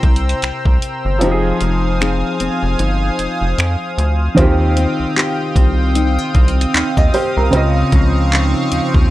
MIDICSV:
0, 0, Header, 1, 6, 480
1, 0, Start_track
1, 0, Tempo, 789474
1, 739, Time_signature, 4, 2, 24, 8
1, 5535, End_track
2, 0, Start_track
2, 0, Title_t, "Analog synth pad"
2, 0, Program_c, 0, 89
2, 0, Note_on_c, 0, 72, 75
2, 0, Note_on_c, 0, 79, 71
2, 0, Note_on_c, 0, 82, 72
2, 0, Note_on_c, 0, 88, 90
2, 714, Note_off_c, 0, 82, 0
2, 719, Note_off_c, 0, 79, 0
2, 719, Note_off_c, 0, 88, 0
2, 741, Note_on_c, 0, 77, 74
2, 741, Note_on_c, 0, 80, 73
2, 741, Note_on_c, 0, 87, 86
2, 2635, Note_off_c, 0, 72, 0
2, 2641, Note_off_c, 0, 77, 0
2, 2641, Note_off_c, 0, 80, 0
2, 2641, Note_off_c, 0, 87, 0
2, 2658, Note_on_c, 0, 79, 76
2, 2658, Note_on_c, 0, 87, 92
2, 2659, Note_on_c, 0, 60, 82
2, 2659, Note_on_c, 0, 77, 78
2, 4559, Note_off_c, 0, 79, 0
2, 4581, Note_on_c, 0, 85, 79
2, 5535, Note_off_c, 0, 60, 0
2, 5535, Note_off_c, 0, 77, 0
2, 5535, Note_off_c, 0, 85, 0
2, 5535, Note_off_c, 0, 87, 0
2, 5535, End_track
3, 0, Start_track
3, 0, Title_t, "Grand piano"
3, 0, Program_c, 1, 0
3, 0, Control_c, 1, 64, 127
3, 0, Note_on_c, 1, 48, 76
3, 0, Note_on_c, 1, 60, 66
3, 0, Note_on_c, 1, 64, 67
3, 0, Note_on_c, 1, 70, 82
3, 467, Note_off_c, 1, 48, 0
3, 473, Note_off_c, 1, 60, 0
3, 479, Note_off_c, 1, 64, 0
3, 485, Note_off_c, 1, 70, 0
3, 722, Note_on_c, 1, 53, 79
3, 734, Note_on_c, 1, 60, 67
3, 746, Note_on_c, 1, 63, 68
3, 748, Control_c, 1, 64, 0
3, 758, Note_on_c, 1, 67, 68
3, 795, Note_off_c, 1, 67, 0
3, 799, Note_on_c, 1, 68, 85
3, 839, Control_c, 1, 64, 127
3, 2626, Note_off_c, 1, 53, 0
3, 2632, Note_off_c, 1, 60, 0
3, 2638, Note_off_c, 1, 63, 0
3, 2642, Note_on_c, 1, 51, 76
3, 2655, Note_on_c, 1, 60, 75
3, 2665, Note_off_c, 1, 68, 0
3, 2667, Control_c, 1, 64, 0
3, 2667, Note_on_c, 1, 65, 72
3, 2680, Note_on_c, 1, 67, 85
3, 2763, Control_c, 1, 64, 127
3, 4243, Note_on_c, 1, 75, 67
3, 4337, Note_off_c, 1, 75, 0
3, 4343, Note_on_c, 1, 72, 72
3, 4473, Note_off_c, 1, 72, 0
3, 4480, Note_on_c, 1, 70, 66
3, 4547, Note_off_c, 1, 51, 0
3, 4553, Note_off_c, 1, 60, 0
3, 4559, Note_off_c, 1, 65, 0
3, 4563, Note_on_c, 1, 49, 81
3, 4565, Note_off_c, 1, 67, 0
3, 4576, Note_on_c, 1, 60, 75
3, 4587, Control_c, 1, 64, 0
3, 4589, Note_on_c, 1, 65, 72
3, 4601, Note_on_c, 1, 75, 86
3, 4704, Control_c, 1, 64, 127
3, 4707, Note_off_c, 1, 70, 0
3, 5535, Note_off_c, 1, 49, 0
3, 5535, Note_off_c, 1, 60, 0
3, 5535, Note_off_c, 1, 65, 0
3, 5535, Note_off_c, 1, 75, 0
3, 5535, End_track
4, 0, Start_track
4, 0, Title_t, "Nylon-string guitar"
4, 0, Program_c, 2, 24
4, 0, Note_on_c, 2, 48, 81
4, 0, Note_on_c, 2, 58, 62
4, 0, Note_on_c, 2, 64, 65
4, 0, Note_on_c, 2, 67, 68
4, 738, Note_on_c, 2, 53, 82
4, 739, Note_off_c, 2, 48, 0
4, 795, Note_off_c, 2, 58, 0
4, 795, Note_off_c, 2, 64, 0
4, 799, Note_off_c, 2, 67, 0
4, 979, Note_on_c, 2, 63, 62
4, 1219, Note_on_c, 2, 60, 61
4, 1220, Note_off_c, 2, 63, 0
4, 1223, Note_on_c, 2, 63, 61
4, 1226, Note_on_c, 2, 68, 69
4, 1458, Note_off_c, 2, 60, 0
4, 1461, Note_on_c, 2, 60, 60
4, 1697, Note_off_c, 2, 63, 0
4, 1699, Note_on_c, 2, 63, 60
4, 2659, Note_on_c, 2, 51, 85
4, 2677, Note_off_c, 2, 53, 0
4, 2718, Note_off_c, 2, 68, 0
4, 2898, Note_off_c, 2, 60, 0
4, 2900, Note_on_c, 2, 60, 66
4, 3141, Note_on_c, 2, 67, 70
4, 3378, Note_off_c, 2, 60, 0
4, 3381, Note_on_c, 2, 60, 67
4, 3619, Note_off_c, 2, 63, 0
4, 3621, Note_on_c, 2, 63, 67
4, 3760, Note_off_c, 2, 63, 0
4, 3760, Note_on_c, 2, 65, 59
4, 3858, Note_off_c, 2, 60, 0
4, 3860, Note_on_c, 2, 60, 65
4, 4097, Note_off_c, 2, 65, 0
4, 4099, Note_on_c, 2, 63, 65
4, 4240, Note_off_c, 2, 63, 0
4, 4240, Note_on_c, 2, 65, 55
4, 4332, Note_off_c, 2, 67, 0
4, 4340, Note_on_c, 2, 67, 73
4, 4578, Note_off_c, 2, 51, 0
4, 4580, Note_on_c, 2, 49, 84
4, 4635, Note_off_c, 2, 67, 0
4, 4636, Note_off_c, 2, 65, 0
4, 4821, Note_on_c, 2, 53, 63
4, 5060, Note_on_c, 2, 63, 74
4, 5294, Note_off_c, 2, 53, 0
4, 5301, Note_on_c, 2, 53, 67
4, 5535, Note_off_c, 2, 49, 0
4, 5535, Note_off_c, 2, 53, 0
4, 5535, Note_off_c, 2, 60, 0
4, 5535, Note_off_c, 2, 63, 0
4, 5535, End_track
5, 0, Start_track
5, 0, Title_t, "Analog synth bass"
5, 0, Program_c, 3, 38
5, 19, Note_on_c, 3, 36, 96
5, 209, Note_off_c, 3, 36, 0
5, 259, Note_on_c, 3, 36, 49
5, 315, Note_off_c, 3, 36, 0
5, 398, Note_on_c, 3, 36, 90
5, 478, Note_off_c, 3, 36, 0
5, 639, Note_on_c, 3, 31, 88
5, 740, Note_on_c, 3, 29, 106
5, 749, Note_off_c, 3, 31, 0
5, 929, Note_off_c, 3, 29, 0
5, 981, Note_on_c, 3, 29, 101
5, 1360, Note_off_c, 3, 29, 0
5, 1461, Note_on_c, 3, 29, 46
5, 1516, Note_off_c, 3, 29, 0
5, 1598, Note_on_c, 3, 29, 94
5, 1678, Note_off_c, 3, 29, 0
5, 1698, Note_on_c, 3, 31, 104
5, 1888, Note_off_c, 3, 31, 0
5, 1939, Note_on_c, 3, 29, 45
5, 1995, Note_off_c, 3, 29, 0
5, 2076, Note_on_c, 3, 29, 89
5, 2157, Note_off_c, 3, 29, 0
5, 2178, Note_on_c, 3, 41, 97
5, 2289, Note_off_c, 3, 41, 0
5, 2419, Note_on_c, 3, 38, 88
5, 2609, Note_off_c, 3, 38, 0
5, 2660, Note_on_c, 3, 39, 112
5, 2960, Note_off_c, 3, 39, 0
5, 3038, Note_on_c, 3, 36, 47
5, 3078, Note_off_c, 3, 36, 0
5, 3379, Note_on_c, 3, 36, 92
5, 3758, Note_off_c, 3, 36, 0
5, 3859, Note_on_c, 3, 36, 101
5, 4049, Note_off_c, 3, 36, 0
5, 4100, Note_on_c, 3, 39, 48
5, 4155, Note_off_c, 3, 39, 0
5, 4239, Note_on_c, 3, 39, 85
5, 4318, Note_off_c, 3, 39, 0
5, 4481, Note_on_c, 3, 36, 94
5, 4560, Note_off_c, 3, 36, 0
5, 4578, Note_on_c, 3, 37, 114
5, 4768, Note_off_c, 3, 37, 0
5, 4818, Note_on_c, 3, 37, 96
5, 5198, Note_off_c, 3, 37, 0
5, 5301, Note_on_c, 3, 39, 49
5, 5356, Note_off_c, 3, 39, 0
5, 5438, Note_on_c, 3, 39, 93
5, 5535, Note_off_c, 3, 39, 0
5, 5535, End_track
6, 0, Start_track
6, 0, Title_t, "Drums"
6, 19, Note_on_c, 9, 36, 95
6, 19, Note_on_c, 9, 42, 35
6, 79, Note_off_c, 9, 42, 0
6, 80, Note_off_c, 9, 36, 0
6, 98, Note_on_c, 9, 42, 48
6, 159, Note_off_c, 9, 42, 0
6, 178, Note_on_c, 9, 42, 60
6, 239, Note_off_c, 9, 42, 0
6, 257, Note_on_c, 9, 42, 59
6, 266, Note_on_c, 9, 26, 106
6, 318, Note_off_c, 9, 42, 0
6, 327, Note_off_c, 9, 26, 0
6, 398, Note_on_c, 9, 36, 91
6, 459, Note_off_c, 9, 36, 0
6, 500, Note_on_c, 9, 42, 65
6, 561, Note_off_c, 9, 42, 0
6, 737, Note_on_c, 9, 42, 67
6, 798, Note_off_c, 9, 42, 0
6, 976, Note_on_c, 9, 42, 55
6, 1037, Note_off_c, 9, 42, 0
6, 1226, Note_on_c, 9, 26, 104
6, 1287, Note_off_c, 9, 26, 0
6, 1460, Note_on_c, 9, 42, 62
6, 1521, Note_off_c, 9, 42, 0
6, 1698, Note_on_c, 9, 42, 72
6, 1758, Note_off_c, 9, 42, 0
6, 1939, Note_on_c, 9, 42, 57
6, 2000, Note_off_c, 9, 42, 0
6, 2180, Note_on_c, 9, 42, 61
6, 2188, Note_on_c, 9, 26, 112
6, 2240, Note_off_c, 9, 42, 0
6, 2249, Note_off_c, 9, 26, 0
6, 2423, Note_on_c, 9, 42, 64
6, 2484, Note_off_c, 9, 42, 0
6, 2660, Note_on_c, 9, 36, 117
6, 2661, Note_on_c, 9, 42, 70
6, 2721, Note_off_c, 9, 36, 0
6, 2722, Note_off_c, 9, 42, 0
6, 2899, Note_on_c, 9, 42, 57
6, 2960, Note_off_c, 9, 42, 0
6, 3148, Note_on_c, 9, 39, 111
6, 3209, Note_off_c, 9, 39, 0
6, 3379, Note_on_c, 9, 36, 97
6, 3382, Note_on_c, 9, 42, 68
6, 3440, Note_off_c, 9, 36, 0
6, 3442, Note_off_c, 9, 42, 0
6, 3620, Note_on_c, 9, 42, 74
6, 3681, Note_off_c, 9, 42, 0
6, 3858, Note_on_c, 9, 42, 39
6, 3860, Note_on_c, 9, 36, 96
6, 3919, Note_off_c, 9, 42, 0
6, 3921, Note_off_c, 9, 36, 0
6, 3940, Note_on_c, 9, 42, 50
6, 4001, Note_off_c, 9, 42, 0
6, 4020, Note_on_c, 9, 42, 67
6, 4081, Note_off_c, 9, 42, 0
6, 4100, Note_on_c, 9, 42, 62
6, 4109, Note_on_c, 9, 39, 119
6, 4161, Note_off_c, 9, 42, 0
6, 4170, Note_off_c, 9, 39, 0
6, 4239, Note_on_c, 9, 36, 98
6, 4300, Note_off_c, 9, 36, 0
6, 4340, Note_on_c, 9, 46, 78
6, 4401, Note_off_c, 9, 46, 0
6, 4578, Note_on_c, 9, 42, 68
6, 4638, Note_off_c, 9, 42, 0
6, 4817, Note_on_c, 9, 42, 57
6, 4819, Note_on_c, 9, 36, 96
6, 4878, Note_off_c, 9, 42, 0
6, 4879, Note_off_c, 9, 36, 0
6, 5067, Note_on_c, 9, 39, 109
6, 5128, Note_off_c, 9, 39, 0
6, 5300, Note_on_c, 9, 42, 67
6, 5361, Note_off_c, 9, 42, 0
6, 5438, Note_on_c, 9, 36, 101
6, 5499, Note_off_c, 9, 36, 0
6, 5535, End_track
0, 0, End_of_file